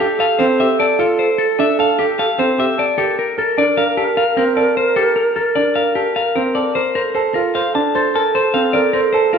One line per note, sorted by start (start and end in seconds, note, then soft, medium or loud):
0.00 0.26 G4 medium
0.00 2.74 A4 medium
0.20 0.46 A4 medium
0.20 0.46 F5 medium
0.39 0.66 C4 medium
0.39 0.65 C5 medium
0.60 0.86 G4 medium
0.60 0.86 E5 medium
0.79 1.05 A4 medium
0.79 1.06 D5 medium
0.99 1.25 F4 medium
0.99 1.25 A4 medium
1.19 1.45 C5 medium
1.38 1.65 A4 medium
1.59 1.85 D4 medium
1.59 1.79 E5 medium
1.79 2.05 A4 medium
1.79 2.05 F5 medium
1.99 2.25 G4 medium
2.19 2.45 A4 medium
2.19 2.45 F5 medium
2.38 2.64 C4 medium
2.38 2.65 C5 medium
2.59 2.84 G4 medium
2.59 2.85 E5 medium
2.78 3.04 A4 medium
2.78 3.04 D5 medium
2.98 3.24 G4 medium
2.98 3.18 A4 medium
2.98 6.72 A#4 medium
3.19 3.38 A#4 medium
3.38 3.64 A4 medium
3.38 3.64 A#4 medium
3.58 3.84 D4 medium
3.58 3.84 D5 medium
3.77 4.03 A#4 medium
3.77 4.03 F5 medium
3.97 4.23 G4 medium
3.97 4.23 A4 medium
4.17 4.43 A#4 medium
4.17 4.43 F5 medium
4.37 4.63 C4 medium
4.37 4.63 A#4 medium
4.56 4.83 A4 medium
4.56 4.77 D5 medium
4.77 5.03 A#4 medium
4.77 5.03 C5 medium
4.96 5.22 G4 medium
4.96 5.23 A4 medium
5.16 5.42 A#4 medium
5.36 5.62 A4 medium
5.36 5.62 A#4 medium
5.55 5.82 D4 medium
5.55 5.82 D5 medium
5.75 6.02 A#4 medium
5.75 6.02 F5 medium
5.95 6.22 G4 medium
5.95 6.22 A4 medium
6.16 6.42 A#4 medium
6.16 6.42 F5 medium
6.35 6.62 C4 medium
6.35 6.62 A#4 medium
6.55 6.82 A4 medium
6.55 6.81 D5 medium
6.75 7.01 A#4 medium
6.75 7.01 C5 medium
6.95 9.38 A4 medium
6.95 7.21 A#4 medium
6.95 7.21 C5 medium
7.15 7.41 A4 medium
7.15 7.41 C5 medium
7.34 7.61 F4 medium
7.34 7.61 A#4 medium
7.55 7.81 C5 medium
7.55 7.75 F5 medium
7.75 8.01 D4 medium
7.75 8.01 A5 medium
7.95 8.21 A4 medium
7.95 8.21 C5 medium
8.15 8.41 A#4 medium
8.15 8.41 A5 medium
8.35 8.61 C5 medium
8.54 8.80 C4 medium
8.54 8.80 F5 medium
8.73 9.00 A#4 medium
8.73 9.00 D5 medium
8.93 9.20 A#4 medium
8.93 9.20 C5 medium
9.13 9.38 A4 medium
9.13 9.38 C5 medium
9.33 9.38 F4 medium
9.33 9.38 A#4 medium